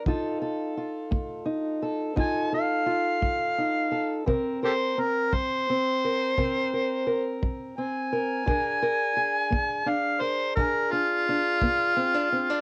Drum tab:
BD |o--o--o--o--|o--o--o--o--|o--o--o--o--|